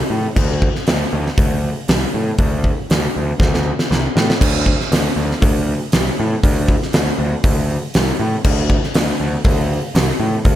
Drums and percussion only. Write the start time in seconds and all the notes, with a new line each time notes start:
0.36 kick, crash
0.62 kick
0.76 snare
0.87 snare, open hi-hat
1.27 snare
1.38 kick, open hi-hat
1.88 snare, open hi-hat
2.38 kick, open hi-hat
2.64 kick
2.90 snare, open hi-hat
3.40 kick, snare
3.54 snare
3.79 snare
3.92 snare
4.17 snare
4.30 snare
4.41 kick, crash
4.66 kick
4.81 snare
4.92 snare, open hi-hat
5.31 snare
5.42 kick, open hi-hat
5.92 snare, open hi-hat
6.43 kick, open hi-hat
6.68 kick
6.82 snare
6.93 snare, open hi-hat
7.44 kick, open hi-hat
7.94 snare, open hi-hat
8.44 kick, crash
8.70 kick
8.84 snare
8.94 snare, open hi-hat
9.44 kick, open hi-hat
9.95 snare, open hi-hat
10.45 kick, open hi-hat